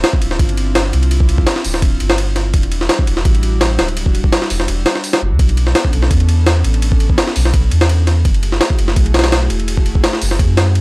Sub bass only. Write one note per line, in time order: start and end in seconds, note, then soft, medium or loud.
0.22 0.38 D1 medium
0.39 0.92 G1 medium
0.93 1.45 C2 medium
1.65 1.81 D1 medium
1.82 1.99 D1 loud
2.00 2.53 G1 medium
2.54 2.88 E1 loud
3.07 3.24 E1 medium
3.25 3.77 A1 medium
3.79 4.31 D1 medium
4.50 4.66 E1 medium
4.68 4.84 E1 loud
5.22 5.33 F#1 medium
5.31 5.39 E2 loud
5.39 5.74 B1 loud
5.93 6.09 B1 medium
6.11 6.63 E2 medium
6.64 7.17 A1 medium
7.36 7.52 B1 medium
7.54 7.70 B1 loud
7.72 8.24 E2 medium
8.25 8.60 F#1 loud
8.79 8.95 F#1 medium
8.97 9.49 B1 medium
9.50 10.02 E1 medium
10.22 10.41 F#1 loud
10.39 10.81 F#2 loud